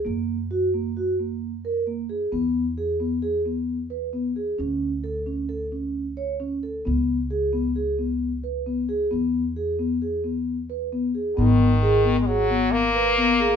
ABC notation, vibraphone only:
X:1
M:5/4
L:1/8
Q:1/4=132
K:Elyd
V:1 name="Vibraphone"
A,2 F A, F A,2 A A, G | B,2 G B, G B,2 B B, G | C2 =A C A C2 c C A | B,2 G B, G B,2 B B, G |
B,2 G B, G B,2 B B, G | B,2 G B, G B,2 B B, G |]